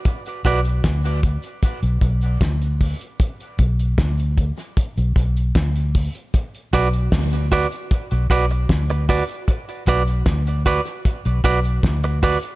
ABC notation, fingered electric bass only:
X:1
M:4/4
L:1/16
Q:1/4=76
K:Bm
V:1 name="Fingered electric bass" clef=bass
z2 B,,,2 D,,3 z2 B,,, B,,,2 D,,3 z | z2 B,,,2 D,,3 z2 B,,, B,,,2 D,,3 z | z2 B,,,2 D,,3 z2 B,,, B,,,2 D,,3 z | z2 B,,,2 D,,3 z2 B,,, B,,,2 D,,3 z |]